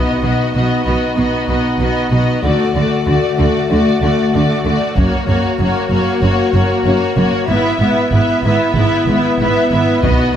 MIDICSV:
0, 0, Header, 1, 8, 480
1, 0, Start_track
1, 0, Tempo, 632244
1, 1855, Time_signature, 4, 2, 24, 8
1, 7868, End_track
2, 0, Start_track
2, 0, Title_t, "Violin section"
2, 0, Program_c, 0, 48
2, 0, Note_on_c, 0, 75, 36
2, 179, Note_off_c, 0, 75, 0
2, 189, Note_on_c, 0, 75, 29
2, 416, Note_off_c, 0, 75, 0
2, 425, Note_on_c, 0, 75, 33
2, 651, Note_off_c, 0, 75, 0
2, 660, Note_on_c, 0, 75, 30
2, 883, Note_off_c, 0, 75, 0
2, 893, Note_on_c, 0, 75, 34
2, 1123, Note_off_c, 0, 75, 0
2, 1132, Note_on_c, 0, 75, 32
2, 1365, Note_off_c, 0, 75, 0
2, 1374, Note_on_c, 0, 75, 35
2, 1606, Note_off_c, 0, 75, 0
2, 1615, Note_on_c, 0, 75, 33
2, 1850, Note_off_c, 0, 75, 0
2, 1864, Note_on_c, 0, 74, 37
2, 2087, Note_off_c, 0, 74, 0
2, 2096, Note_on_c, 0, 74, 33
2, 2331, Note_off_c, 0, 74, 0
2, 2342, Note_on_c, 0, 74, 34
2, 2567, Note_off_c, 0, 74, 0
2, 2576, Note_on_c, 0, 74, 36
2, 2809, Note_off_c, 0, 74, 0
2, 2819, Note_on_c, 0, 74, 41
2, 3051, Note_off_c, 0, 74, 0
2, 3060, Note_on_c, 0, 74, 38
2, 3281, Note_off_c, 0, 74, 0
2, 3290, Note_on_c, 0, 74, 38
2, 3520, Note_off_c, 0, 74, 0
2, 3529, Note_on_c, 0, 74, 40
2, 3767, Note_off_c, 0, 74, 0
2, 3767, Note_on_c, 0, 73, 43
2, 3998, Note_off_c, 0, 73, 0
2, 4008, Note_on_c, 0, 73, 38
2, 4239, Note_off_c, 0, 73, 0
2, 4248, Note_on_c, 0, 73, 40
2, 4480, Note_off_c, 0, 73, 0
2, 4489, Note_on_c, 0, 73, 40
2, 4712, Note_off_c, 0, 73, 0
2, 4721, Note_on_c, 0, 73, 46
2, 4949, Note_off_c, 0, 73, 0
2, 4958, Note_on_c, 0, 73, 37
2, 5191, Note_off_c, 0, 73, 0
2, 5201, Note_on_c, 0, 73, 46
2, 5436, Note_off_c, 0, 73, 0
2, 5445, Note_on_c, 0, 73, 43
2, 5685, Note_off_c, 0, 73, 0
2, 5694, Note_on_c, 0, 76, 47
2, 5917, Note_off_c, 0, 76, 0
2, 5926, Note_on_c, 0, 76, 39
2, 6152, Note_off_c, 0, 76, 0
2, 6161, Note_on_c, 0, 76, 46
2, 6405, Note_off_c, 0, 76, 0
2, 6416, Note_on_c, 0, 76, 42
2, 6634, Note_off_c, 0, 76, 0
2, 6643, Note_on_c, 0, 76, 44
2, 6880, Note_off_c, 0, 76, 0
2, 6889, Note_on_c, 0, 76, 43
2, 7129, Note_off_c, 0, 76, 0
2, 7138, Note_on_c, 0, 76, 48
2, 7371, Note_off_c, 0, 76, 0
2, 7380, Note_on_c, 0, 76, 44
2, 7617, Note_off_c, 0, 76, 0
2, 7618, Note_on_c, 0, 75, 46
2, 7852, Note_off_c, 0, 75, 0
2, 7868, End_track
3, 0, Start_track
3, 0, Title_t, "Violin section"
3, 0, Program_c, 1, 48
3, 0, Note_on_c, 1, 66, 33
3, 168, Note_off_c, 1, 66, 0
3, 177, Note_on_c, 1, 66, 33
3, 410, Note_off_c, 1, 66, 0
3, 420, Note_on_c, 1, 66, 32
3, 644, Note_off_c, 1, 66, 0
3, 653, Note_on_c, 1, 66, 33
3, 890, Note_off_c, 1, 66, 0
3, 903, Note_on_c, 1, 66, 36
3, 1124, Note_off_c, 1, 66, 0
3, 1133, Note_on_c, 1, 66, 32
3, 1356, Note_off_c, 1, 66, 0
3, 1366, Note_on_c, 1, 66, 34
3, 1600, Note_off_c, 1, 66, 0
3, 1609, Note_on_c, 1, 66, 33
3, 1837, Note_off_c, 1, 66, 0
3, 1846, Note_on_c, 1, 66, 40
3, 2076, Note_off_c, 1, 66, 0
3, 2085, Note_on_c, 1, 66, 35
3, 2314, Note_off_c, 1, 66, 0
3, 2323, Note_on_c, 1, 66, 35
3, 2553, Note_off_c, 1, 66, 0
3, 2563, Note_on_c, 1, 66, 38
3, 2801, Note_off_c, 1, 66, 0
3, 2810, Note_on_c, 1, 66, 43
3, 3048, Note_off_c, 1, 66, 0
3, 3058, Note_on_c, 1, 66, 36
3, 3280, Note_off_c, 1, 66, 0
3, 3289, Note_on_c, 1, 66, 35
3, 3526, Note_off_c, 1, 66, 0
3, 3535, Note_on_c, 1, 66, 36
3, 3756, Note_off_c, 1, 66, 0
3, 3765, Note_on_c, 1, 66, 41
3, 3998, Note_off_c, 1, 66, 0
3, 4007, Note_on_c, 1, 66, 41
3, 4240, Note_off_c, 1, 66, 0
3, 4249, Note_on_c, 1, 66, 37
3, 4479, Note_off_c, 1, 66, 0
3, 4488, Note_on_c, 1, 66, 38
3, 4714, Note_off_c, 1, 66, 0
3, 4723, Note_on_c, 1, 66, 45
3, 4948, Note_off_c, 1, 66, 0
3, 4957, Note_on_c, 1, 66, 37
3, 5187, Note_off_c, 1, 66, 0
3, 5196, Note_on_c, 1, 66, 44
3, 5438, Note_off_c, 1, 66, 0
3, 5447, Note_on_c, 1, 66, 44
3, 5684, Note_on_c, 1, 64, 51
3, 5686, Note_off_c, 1, 66, 0
3, 5913, Note_off_c, 1, 64, 0
3, 5922, Note_on_c, 1, 64, 43
3, 6165, Note_off_c, 1, 64, 0
3, 6180, Note_on_c, 1, 64, 40
3, 6402, Note_off_c, 1, 64, 0
3, 6411, Note_on_c, 1, 64, 46
3, 6643, Note_off_c, 1, 64, 0
3, 6652, Note_on_c, 1, 64, 49
3, 6888, Note_off_c, 1, 64, 0
3, 6897, Note_on_c, 1, 64, 42
3, 7121, Note_off_c, 1, 64, 0
3, 7130, Note_on_c, 1, 64, 42
3, 7371, Note_off_c, 1, 64, 0
3, 7379, Note_on_c, 1, 64, 42
3, 7616, Note_off_c, 1, 64, 0
3, 7621, Note_on_c, 1, 66, 49
3, 7858, Note_off_c, 1, 66, 0
3, 7868, End_track
4, 0, Start_track
4, 0, Title_t, "French horn section"
4, 0, Program_c, 2, 60
4, 0, Note_on_c, 2, 59, 35
4, 0, Note_on_c, 2, 63, 38
4, 1856, Note_off_c, 2, 63, 0
4, 1858, Note_on_c, 2, 66, 41
4, 1859, Note_off_c, 2, 59, 0
4, 1859, Note_on_c, 2, 57, 42
4, 3656, Note_off_c, 2, 57, 0
4, 3656, Note_off_c, 2, 66, 0
4, 3785, Note_on_c, 2, 66, 51
4, 3787, Note_on_c, 2, 58, 50
4, 5668, Note_off_c, 2, 66, 0
4, 5669, Note_off_c, 2, 58, 0
4, 5696, Note_on_c, 2, 64, 60
4, 5700, Note_on_c, 2, 59, 56
4, 7593, Note_off_c, 2, 64, 0
4, 7621, Note_on_c, 2, 63, 59
4, 7868, Note_off_c, 2, 59, 0
4, 7868, Note_off_c, 2, 63, 0
4, 7868, End_track
5, 0, Start_track
5, 0, Title_t, "Viola section"
5, 0, Program_c, 3, 48
5, 0, Note_on_c, 3, 59, 35
5, 172, Note_off_c, 3, 59, 0
5, 183, Note_on_c, 3, 59, 32
5, 410, Note_off_c, 3, 59, 0
5, 420, Note_on_c, 3, 59, 33
5, 651, Note_off_c, 3, 59, 0
5, 660, Note_on_c, 3, 59, 35
5, 887, Note_off_c, 3, 59, 0
5, 896, Note_on_c, 3, 59, 35
5, 1128, Note_off_c, 3, 59, 0
5, 1137, Note_on_c, 3, 59, 33
5, 1371, Note_off_c, 3, 59, 0
5, 1380, Note_on_c, 3, 59, 37
5, 1613, Note_off_c, 3, 59, 0
5, 1621, Note_on_c, 3, 59, 33
5, 1853, Note_off_c, 3, 59, 0
5, 1858, Note_on_c, 3, 57, 39
5, 2091, Note_off_c, 3, 57, 0
5, 2104, Note_on_c, 3, 57, 35
5, 2331, Note_off_c, 3, 57, 0
5, 2340, Note_on_c, 3, 57, 36
5, 2569, Note_off_c, 3, 57, 0
5, 2578, Note_on_c, 3, 57, 38
5, 2812, Note_off_c, 3, 57, 0
5, 2821, Note_on_c, 3, 57, 39
5, 3047, Note_off_c, 3, 57, 0
5, 3056, Note_on_c, 3, 57, 39
5, 3285, Note_off_c, 3, 57, 0
5, 3294, Note_on_c, 3, 57, 38
5, 3521, Note_off_c, 3, 57, 0
5, 3530, Note_on_c, 3, 57, 35
5, 3767, Note_off_c, 3, 57, 0
5, 3775, Note_on_c, 3, 58, 44
5, 4008, Note_off_c, 3, 58, 0
5, 4017, Note_on_c, 3, 58, 38
5, 4248, Note_off_c, 3, 58, 0
5, 4257, Note_on_c, 3, 58, 41
5, 4489, Note_off_c, 3, 58, 0
5, 4501, Note_on_c, 3, 58, 39
5, 4731, Note_off_c, 3, 58, 0
5, 4741, Note_on_c, 3, 58, 44
5, 4969, Note_off_c, 3, 58, 0
5, 4979, Note_on_c, 3, 58, 41
5, 5210, Note_off_c, 3, 58, 0
5, 5219, Note_on_c, 3, 58, 44
5, 5449, Note_off_c, 3, 58, 0
5, 5459, Note_on_c, 3, 58, 43
5, 5692, Note_off_c, 3, 58, 0
5, 5698, Note_on_c, 3, 59, 51
5, 5930, Note_off_c, 3, 59, 0
5, 5939, Note_on_c, 3, 59, 42
5, 6170, Note_off_c, 3, 59, 0
5, 6180, Note_on_c, 3, 59, 44
5, 6415, Note_off_c, 3, 59, 0
5, 6423, Note_on_c, 3, 59, 45
5, 6657, Note_off_c, 3, 59, 0
5, 6670, Note_on_c, 3, 59, 47
5, 6900, Note_off_c, 3, 59, 0
5, 6913, Note_on_c, 3, 59, 44
5, 7132, Note_off_c, 3, 59, 0
5, 7141, Note_on_c, 3, 59, 48
5, 7376, Note_off_c, 3, 59, 0
5, 7393, Note_on_c, 3, 59, 39
5, 7618, Note_off_c, 3, 59, 0
5, 7627, Note_on_c, 3, 59, 51
5, 7853, Note_off_c, 3, 59, 0
5, 7868, End_track
6, 0, Start_track
6, 0, Title_t, "Cello section"
6, 0, Program_c, 4, 48
6, 173, Note_on_c, 4, 47, 34
6, 234, Note_off_c, 4, 47, 0
6, 419, Note_on_c, 4, 47, 31
6, 480, Note_off_c, 4, 47, 0
6, 661, Note_on_c, 4, 47, 37
6, 722, Note_off_c, 4, 47, 0
6, 894, Note_on_c, 4, 47, 43
6, 955, Note_off_c, 4, 47, 0
6, 1134, Note_on_c, 4, 47, 35
6, 1195, Note_off_c, 4, 47, 0
6, 1373, Note_on_c, 4, 47, 38
6, 1434, Note_off_c, 4, 47, 0
6, 1607, Note_on_c, 4, 47, 34
6, 1668, Note_off_c, 4, 47, 0
6, 1847, Note_on_c, 4, 50, 42
6, 1907, Note_off_c, 4, 50, 0
6, 2087, Note_on_c, 4, 50, 37
6, 2148, Note_off_c, 4, 50, 0
6, 2325, Note_on_c, 4, 50, 38
6, 2385, Note_off_c, 4, 50, 0
6, 2567, Note_on_c, 4, 50, 41
6, 2627, Note_off_c, 4, 50, 0
6, 2808, Note_on_c, 4, 50, 45
6, 2869, Note_off_c, 4, 50, 0
6, 3051, Note_on_c, 4, 50, 43
6, 3112, Note_off_c, 4, 50, 0
6, 3294, Note_on_c, 4, 50, 42
6, 3355, Note_off_c, 4, 50, 0
6, 3530, Note_on_c, 4, 50, 43
6, 3590, Note_off_c, 4, 50, 0
6, 3771, Note_on_c, 4, 42, 50
6, 3831, Note_off_c, 4, 42, 0
6, 4013, Note_on_c, 4, 42, 42
6, 4074, Note_off_c, 4, 42, 0
6, 4244, Note_on_c, 4, 42, 43
6, 4305, Note_off_c, 4, 42, 0
6, 4485, Note_on_c, 4, 42, 44
6, 4546, Note_off_c, 4, 42, 0
6, 4723, Note_on_c, 4, 42, 49
6, 4784, Note_off_c, 4, 42, 0
6, 4961, Note_on_c, 4, 42, 47
6, 5022, Note_off_c, 4, 42, 0
6, 5200, Note_on_c, 4, 42, 50
6, 5261, Note_off_c, 4, 42, 0
6, 5441, Note_on_c, 4, 42, 45
6, 5502, Note_off_c, 4, 42, 0
6, 5682, Note_on_c, 4, 44, 50
6, 5743, Note_off_c, 4, 44, 0
6, 5927, Note_on_c, 4, 44, 46
6, 5988, Note_off_c, 4, 44, 0
6, 6168, Note_on_c, 4, 44, 45
6, 6229, Note_off_c, 4, 44, 0
6, 6413, Note_on_c, 4, 44, 49
6, 6474, Note_off_c, 4, 44, 0
6, 6652, Note_on_c, 4, 44, 55
6, 6713, Note_off_c, 4, 44, 0
6, 6898, Note_on_c, 4, 44, 50
6, 6959, Note_off_c, 4, 44, 0
6, 7136, Note_on_c, 4, 44, 48
6, 7197, Note_off_c, 4, 44, 0
6, 7376, Note_on_c, 4, 44, 47
6, 7437, Note_off_c, 4, 44, 0
6, 7619, Note_on_c, 4, 47, 51
6, 7680, Note_off_c, 4, 47, 0
6, 7868, End_track
7, 0, Start_track
7, 0, Title_t, "Double bass section"
7, 0, Program_c, 5, 48
7, 176, Note_on_c, 5, 35, 33
7, 236, Note_off_c, 5, 35, 0
7, 416, Note_on_c, 5, 35, 34
7, 477, Note_off_c, 5, 35, 0
7, 655, Note_on_c, 5, 35, 37
7, 715, Note_off_c, 5, 35, 0
7, 892, Note_on_c, 5, 35, 42
7, 953, Note_off_c, 5, 35, 0
7, 1129, Note_on_c, 5, 35, 39
7, 1189, Note_off_c, 5, 35, 0
7, 1364, Note_on_c, 5, 35, 39
7, 1425, Note_off_c, 5, 35, 0
7, 1606, Note_on_c, 5, 35, 38
7, 1667, Note_off_c, 5, 35, 0
7, 1848, Note_on_c, 5, 38, 40
7, 1909, Note_off_c, 5, 38, 0
7, 2093, Note_on_c, 5, 38, 40
7, 2153, Note_off_c, 5, 38, 0
7, 2331, Note_on_c, 5, 38, 42
7, 2392, Note_off_c, 5, 38, 0
7, 2578, Note_on_c, 5, 38, 41
7, 2639, Note_off_c, 5, 38, 0
7, 2824, Note_on_c, 5, 38, 42
7, 2885, Note_off_c, 5, 38, 0
7, 3053, Note_on_c, 5, 38, 47
7, 3114, Note_off_c, 5, 38, 0
7, 3300, Note_on_c, 5, 38, 45
7, 3361, Note_off_c, 5, 38, 0
7, 3535, Note_on_c, 5, 38, 42
7, 3596, Note_off_c, 5, 38, 0
7, 3771, Note_on_c, 5, 30, 49
7, 3832, Note_off_c, 5, 30, 0
7, 4008, Note_on_c, 5, 30, 46
7, 4069, Note_off_c, 5, 30, 0
7, 4253, Note_on_c, 5, 30, 47
7, 4314, Note_off_c, 5, 30, 0
7, 4486, Note_on_c, 5, 30, 44
7, 4547, Note_off_c, 5, 30, 0
7, 4722, Note_on_c, 5, 30, 51
7, 4782, Note_off_c, 5, 30, 0
7, 4959, Note_on_c, 5, 30, 46
7, 5020, Note_off_c, 5, 30, 0
7, 5200, Note_on_c, 5, 30, 45
7, 5261, Note_off_c, 5, 30, 0
7, 5444, Note_on_c, 5, 30, 48
7, 5505, Note_off_c, 5, 30, 0
7, 5685, Note_on_c, 5, 32, 51
7, 5746, Note_off_c, 5, 32, 0
7, 5923, Note_on_c, 5, 32, 45
7, 5984, Note_off_c, 5, 32, 0
7, 6163, Note_on_c, 5, 32, 48
7, 6224, Note_off_c, 5, 32, 0
7, 6409, Note_on_c, 5, 32, 47
7, 6470, Note_off_c, 5, 32, 0
7, 6643, Note_on_c, 5, 32, 58
7, 6703, Note_off_c, 5, 32, 0
7, 6889, Note_on_c, 5, 32, 56
7, 6950, Note_off_c, 5, 32, 0
7, 7129, Note_on_c, 5, 32, 49
7, 7190, Note_off_c, 5, 32, 0
7, 7376, Note_on_c, 5, 32, 50
7, 7437, Note_off_c, 5, 32, 0
7, 7614, Note_on_c, 5, 35, 54
7, 7674, Note_off_c, 5, 35, 0
7, 7868, End_track
8, 0, Start_track
8, 0, Title_t, "Taiko and cinematic ensemble drums"
8, 3777, Note_on_c, 9, 41, 46
8, 3853, Note_off_c, 9, 41, 0
8, 7619, Note_on_c, 9, 41, 49
8, 7695, Note_off_c, 9, 41, 0
8, 7868, End_track
0, 0, End_of_file